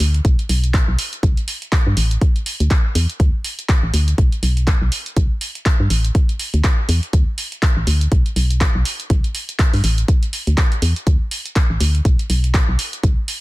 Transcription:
0.00 fm bass D2, open hi-hat
0.14 closed hi-hat
0.25 fm bass B1, kick, closed hi-hat
0.39 closed hi-hat
0.49 fm bass B1, open hi-hat
0.64 closed hi-hat
0.74 kick, clap, closed hi-hat
0.88 fm bass B1
0.99 open hi-hat
1.13 closed hi-hat
1.23 fm bass C2, kick, closed hi-hat
1.37 closed hi-hat
1.48 open hi-hat
1.62 closed hi-hat
1.72 kick, clap, closed hi-hat
1.87 fm bass G2
1.97 fm bass A1, open hi-hat
2.11 closed hi-hat
2.21 kick, closed hi-hat
2.36 closed hi-hat
2.46 open hi-hat
2.60 fm bass D2, closed hi-hat
2.71 kick, clap, closed hi-hat
2.95 fm bass E2, open hi-hat
3.10 closed hi-hat
3.20 fm bass D2, kick, closed hi-hat
3.44 open hi-hat
3.59 closed hi-hat
3.69 kick, clap, closed hi-hat
3.83 fm bass A1
3.94 fm bass D2, open hi-hat
4.08 closed hi-hat
4.18 fm bass B1, kick, closed hi-hat
4.32 closed hi-hat
4.43 fm bass B1, open hi-hat
4.57 closed hi-hat
4.67 kick, clap, closed hi-hat
4.82 fm bass B1
4.92 open hi-hat
5.06 closed hi-hat
5.17 fm bass C2, kick, closed hi-hat
5.41 open hi-hat
5.55 closed hi-hat
5.66 kick, clap, closed hi-hat
5.80 fm bass G2
5.90 fm bass A1, open hi-hat
6.05 closed hi-hat
6.15 kick, closed hi-hat
6.29 closed hi-hat
6.39 open hi-hat
6.54 fm bass D2, closed hi-hat
6.64 kick, clap, closed hi-hat
6.89 fm bass E2, open hi-hat
7.03 closed hi-hat
7.13 fm bass D2, kick, closed hi-hat
7.38 open hi-hat
7.52 closed hi-hat
7.62 kick, clap, closed hi-hat
7.77 fm bass A1
7.87 fm bass D2, open hi-hat
8.01 closed hi-hat
8.12 fm bass B1, kick, closed hi-hat
8.26 closed hi-hat
8.36 fm bass B1, open hi-hat
8.50 closed hi-hat
8.61 kick, clap, closed hi-hat
8.75 fm bass B1
8.85 open hi-hat
9.00 closed hi-hat
9.10 fm bass C2, kick, closed hi-hat
9.24 closed hi-hat
9.35 open hi-hat
9.49 closed hi-hat
9.59 kick, clap, closed hi-hat
9.73 fm bass G2, open hi-hat
9.84 fm bass A1, open hi-hat
9.98 closed hi-hat
10.08 kick, closed hi-hat
10.23 closed hi-hat
10.33 open hi-hat
10.47 fm bass D2, closed hi-hat
10.58 kick, clap, closed hi-hat
10.72 closed hi-hat
10.82 fm bass E2, open hi-hat
10.96 closed hi-hat
11.07 fm bass D2, kick, closed hi-hat
11.31 open hi-hat
11.46 closed hi-hat
11.56 kick, clap, closed hi-hat
11.70 fm bass A1
11.80 fm bass D2, open hi-hat
11.95 closed hi-hat
12.05 fm bass B1, kick, closed hi-hat
12.19 closed hi-hat
12.30 fm bass B1, open hi-hat
12.44 closed hi-hat
12.54 kick, clap, closed hi-hat
12.69 fm bass B1
12.79 open hi-hat
12.93 closed hi-hat
13.03 fm bass C2, kick, closed hi-hat
13.28 open hi-hat

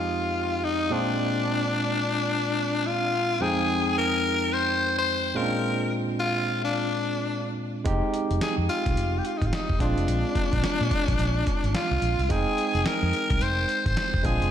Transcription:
Already playing: tine electric piano F2 G#3 C4 D#4 G4, tenor saxophone F4
0.65 tenor saxophone D#4
0.90 tine electric piano A#2 G#3 C4 D4 F4, tenor saxophone D4
2.87 tenor saxophone F4
3.40 tine electric piano F2 G#3 C4 D#4 G5, tenor saxophone G#4
3.98 tenor saxophone A#4
4.53 tenor saxophone C5
4.99 tenor saxophone C5
5.34 tine electric piano A#2 G#3 C4 C#4 F4, tenor saxophone A#4
5.43 tine electric piano D4
6.20 tenor saxophone F4
6.65 tenor saxophone D4
7.84 fingered electric bass F1, tine electric piano G#3 C4 D#4 G4, kick, closed hi-hat
8.14 closed hi-hat
8.31 fingered electric bass F1, closed hi-hat
8.41 tenor saxophone G#4, muted fingered electric bass stroke, snare, closed hi-hat
8.58 fingered electric bass F2
8.69 tenor saxophone F4, closed hi-hat
8.86 fingered electric bass C2, kick, closed hi-hat
8.97 fingered electric bass F1, closed hi-hat
9.18 tenor saxophone G4
9.25 tenor saxophone F4, closed hi-hat
9.38 fingered electric bass G#1, tenor saxophone D#4, kick
9.42 closed hi-hat
9.46 tenor saxophone F4
9.53 tenor saxophone D#4, snare, closed hi-hat
9.70 fingered electric bass F1, kick
9.79 fingered electric bass A#1, tine electric piano G#3 C4 D4 F4, tenor saxophone D4, kick, closed hi-hat
9.98 fingered electric bass F1, closed hi-hat
10.08 fingered electric bass A#1, closed hi-hat
10.35 kick, closed hi-hat
10.53 fingered electric bass A#1, kick, closed hi-hat
10.64 snare, closed hi-hat
10.81 fingered electric bass A#2
10.91 kick, closed hi-hat
11.08 fingered electric bass A#1, kick, closed hi-hat
11.19 fingered electric bass A#1, closed hi-hat
11.47 kick, closed hi-hat
11.64 fingered electric bass G#1, closed hi-hat
11.75 tenor saxophone F4, snare, closed hi-hat
11.91 fingered electric bass C2
12.02 fingered electric bass A#1, closed hi-hat
12.19 fingered electric bass C2, closed hi-hat
12.29 fingered electric bass F1, tine electric piano G#3 C4 D#4 G5, tenor saxophone G#4, kick, closed hi-hat
12.58 closed hi-hat
12.74 fingered electric bass F1, closed hi-hat
12.85 tenor saxophone A#4, muted fingered electric bass stroke, snare, closed hi-hat
13.03 fingered electric bass F2
13.13 closed hi-hat
13.30 fingered electric bass C2, kick, closed hi-hat
13.41 fingered electric bass F1, tenor saxophone C5, closed hi-hat
13.69 closed hi-hat
13.86 fingered electric bass G#1, tenor saxophone C5, kick, closed hi-hat
13.97 snare, closed hi-hat
14.14 fingered electric bass F1, kick
14.23 fingered electric bass A#1, tine electric piano G#3 C4 D4 F4, tenor saxophone G#4, kick, closed hi-hat
14.41 fingered electric bass F1, closed hi-hat

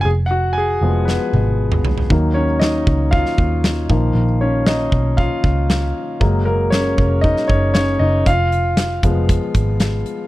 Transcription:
0.01 picked electric bass F1, grand piano G#5
0.05 grand piano G#4
0.26 grand piano F#5
0.31 grand piano F#4
0.53 grand piano G#5
0.58 grand piano G#4
0.81 picked electric bass F1, grand piano F3 G#3 B3
1.05 grand piano B3 B4, snare
1.33 picked electric bass G#1, high tom
1.72 mid tom
1.85 floor tom
1.98 floor tom
2.10 picked electric bass D#2, grand piano D#3 F#3 A#3, kick
2.34 grand piano C#4 C#5
2.60 grand piano D#4 D#5, snare
2.87 picked electric bass C#2, kick
3.11 grand piano F4 F5, kick
3.26 snare
3.38 picked electric bass D#2, kick
3.64 snare
3.89 picked electric bass A#1, grand piano D#3 F3 A#3, kick
4.14 picked electric bass A#1
4.41 grand piano C#4 C#5
4.66 grand piano D#4 D#5, snare
4.92 picked electric bass B1, kick
5.17 grand piano F4 F5, kick
5.44 picked electric bass C#2, kick
5.70 snare
6.20 picked electric bass F#1, grand piano F#3 G#3 A#3, kick
6.45 grand piano A#3 A#4
6.70 grand piano C#4 C#5, snare
6.98 picked electric bass F1, kick
7.21 grand piano D#4 D#5, kick
7.37 snare
7.48 picked electric bass F#1, grand piano C#4 C#5, kick
7.74 grand piano C#4 C#5, snare
7.99 picked electric bass F#1, grand piano D#4 D#5
8.26 picked electric bass F1, grand piano F4 F5, kick, closed hi-hat
8.52 closed hi-hat
8.77 snare, closed hi-hat
9.03 picked electric bass F1, grand piano F3 G#3 B3, kick, closed hi-hat
9.29 kick, closed hi-hat
9.55 picked electric bass G#1, kick, closed hi-hat
9.80 snare, closed hi-hat
10.06 closed hi-hat

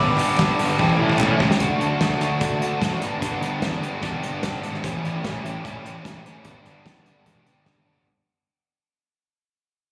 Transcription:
Already playing: overdriven electric guitar G2 D3 G3 B3 D4, glockenspiel D6
0.00 picked electric bass G1, overdriven electric guitar G2 D3 G3 B3 D4 G4, glockenspiel B5
0.17 picked electric bass G1, overdriven electric guitar G2 D3 G3 B3 D4 G4, clap, open hi-hat
0.37 picked electric bass G1, overdriven electric guitar G2 D3 G3 B3 D4 G4, kick, snare, clap
0.41 overdriven electric guitar G2 D3 G3 B3 D4
0.58 picked electric bass G1, overdriven electric guitar G2 D3 G3 B3 D4 G4, open hi-hat
0.62 overdriven electric guitar G3 B3
0.78 picked electric bass A1, overdriven electric guitar A2 E3 G3 C#4 E4 G4, glockenspiel A5, kick
0.89 kick
0.99 picked electric bass A2, overdriven electric guitar A2 E3 G3 C#4 E4 G4
1.10 kick
1.19 picked electric bass A2, overdriven electric guitar A2 E3 G3 C#4 E4 G4, kick, clap
1.40 picked electric bass C#2, overdriven electric guitar A2 E3 G3 C#4 E4 G4, kick
1.51 snare
1.60 picked electric bass D2, overdriven electric guitar D3 F#3 A3 D4 F#4, kick, closed hi-hat
1.80 picked electric bass D2, overdriven electric guitar D3 F#3 A3 D4 F#4, closed hi-hat
2.00 picked electric bass D2, overdriven electric guitar D3 F#3 A3 D4 F#4, kick, snare, closed hi-hat
2.19 picked electric bass D2, overdriven electric guitar D3 F#3 A3 D4 F#4, closed hi-hat
2.40 picked electric bass D2, overdriven electric guitar D3 F#3 A3 D4 F#4, kick, closed hi-hat
2.59 picked electric bass D2, overdriven electric guitar D3 F#3 A3 D4 F#4, closed hi-hat
2.80 picked electric bass A1, overdriven electric guitar D3 F#3 A3 D4 F#4, kick, snare, closed hi-hat
3.00 picked electric bass G1, overdriven electric guitar G2 D3 G3 B3 D4 G4, closed hi-hat
3.20 overdriven electric guitar G2 D3 G3 B3 D4 G4, picked electric bass G2, kick, closed hi-hat
3.39 picked electric bass G1, overdriven electric guitar G2 D3 G3 B3 D4 G4, closed hi-hat
3.60 picked electric bass E2, overdriven electric guitar G2 D3 G3 B3 D4 G4, kick, snare, closed hi-hat
3.79 picked electric bass G1, overdriven electric guitar G2 D3 G3 B3 D4 G4, closed hi-hat
4.01 picked electric bass E1, overdriven electric guitar G2 D3 G3 B3 D4 G4, kick, closed hi-hat
4.20 picked electric bass G1, overdriven electric guitar G2 D3 G3 B3 D4 G4, closed hi-hat
4.43 picked electric bass G1, overdriven electric guitar G2 D3 G3 B3 D4 G4, kick, snare, closed hi-hat
4.62 picked electric bass G#1, overdriven electric guitar G2 D3 G3 B3 D4 G4, closed hi-hat
4.74 snare
4.84 picked electric bass A1, overdriven electric guitar A2 E3 G3 C#4 E4 G4, kick, closed hi-hat
5.02 picked electric bass A1, overdriven electric guitar A2 E3 G3 C#4 E4 G4, closed hi-hat
5.23 picked electric bass A1, overdriven electric guitar A2 E3 G3 C#4 E4 G4, kick, snare, closed hi-hat
5.43 picked electric bass A1, overdriven electric guitar A2 E3 G3 C#4 E4 G4, closed hi-hat
5.64 picked electric bass A1, overdriven electric guitar A2 E3 G3 C#4 E4 G4, kick, closed hi-hat
5.84 picked electric bass A1, overdriven electric guitar A2 E3 G3 C#4 E4 G4, closed hi-hat
6.05 picked electric bass A1, overdriven electric guitar A2 E3 G3 C#4 E4 G4, kick, snare, closed hi-hat
6.25 overdriven electric guitar A2 E3 G3 C#4 E4 G4, closed hi-hat
6.44 picked electric bass G1, overdriven electric guitar G2 D3 G3 B3 D4 G4, kick, closed hi-hat
6.64 picked electric bass G1, overdriven electric guitar G2 D3 G3 B3 D4 G4, closed hi-hat
6.85 picked electric bass E2, overdriven electric guitar G2 D3 G3 B3 D4 G4, kick, snare, closed hi-hat
7.04 picked electric bass G1, overdriven electric guitar G2 D3 G3 B3 D4 G4, closed hi-hat
7.25 picked electric bass E1, overdriven electric guitar G2 D3 G3 B3 D4 G4, kick, closed hi-hat
7.45 picked electric bass G1, overdriven electric guitar G2 D3 G3 B3 D4 G4, closed hi-hat
7.65 picked electric bass G1, overdriven electric guitar G2 D3 G3 B3 D4 G4, kick, snare
7.76 high tom
7.86 picked electric bass G1, overdriven electric guitar G2 D3 G3 B3 D4 G4, mid tom
7.97 floor tom

